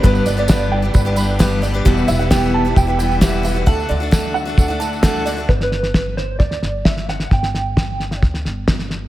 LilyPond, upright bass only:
\new Staff \with { instrumentName = "Upright bass" } { \clef bass \time 4/4 \key d \mixolydian \tempo 4 = 132 g,,8 g,,4. g,,2 | e,,8 e,,4. e,,2 | d,8 d,4. d,2 | g,,2 d,8 g,,4. |
g,,2 d,8 g,,4. | }